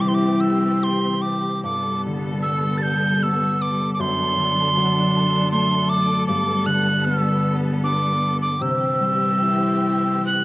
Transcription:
Already playing: harp C3 G3 D4, string section E3 C4 G4
0.00 harp E4, tin whistle D6
0.08 tin whistle C6
0.14 tin whistle D6
0.40 tin whistle E6
0.82 harp G4, tin whistle C6
1.22 tin whistle D6
1.63 harp G2, string section G3 B3 A4, tin whistle D6
2.06 harp D3
2.42 harp G3, tin whistle E6
2.78 tin whistle A6
2.83 tin whistle G6
3.23 harp B3, tin whistle E6
3.62 tin whistle D6
3.94 tin whistle D6
3.99 harp F#2, string section F#3 D4 A4, tin whistle C6
4.37 harp D3
4.77 harp F#3
5.52 harp A3, tin whistle C6
5.89 tin whistle D6
6.27 harp G2, string section G3 B3, tin whistle D6
6.66 harp D3, tin whistle F#6
7.05 harp B3, tin whistle E6
7.83 harp D4, tin whistle D6
8.42 tin whistle D6
8.60 harp C3, string section E3 C4 G4, tin whistle E6
9.00 harp G3
9.42 harp E4
10.26 harp G4, tin whistle F#6

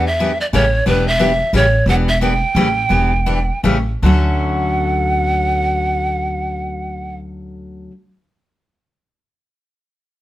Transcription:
Already playing: upright bass E2
0.07 pan flute E5
0.20 steel-string acoustic guitar E3 B3 D4 G4
0.41 pan flute D5
0.53 upright bass A1, steel-string acoustic guitar C#3 E3 A3 C#4 G4, pan flute C#5
0.86 upright bass E1, steel-string acoustic guitar E3 B3 D4 G4, pan flute B4
1.08 pan flute E5
1.19 steel-string acoustic guitar E3 B3 D4 G4
1.53 upright bass A1, steel-string acoustic guitar C#3 E3 A3 C#4 G4, pan flute C#5
1.86 upright bass E1, steel-string acoustic guitar E3 B3 D4 G4, pan flute F#5
2.09 pan flute E5
2.21 steel-string acoustic guitar E3 B3 D4 G4, pan flute G5
2.55 upright bass A1, steel-string acoustic guitar C#3 E3 A3 C#4 G4
2.89 upright bass E1, steel-string acoustic guitar E3 B3 D4 G4
3.26 steel-string acoustic guitar E3 B3 D4 G4
3.63 upright bass A1, steel-string acoustic guitar C#3 E3 A3 C#4 G4
4.02 upright bass D2, steel-string acoustic guitar D3 F#3 A3 C#4 F#4, pan flute F#5

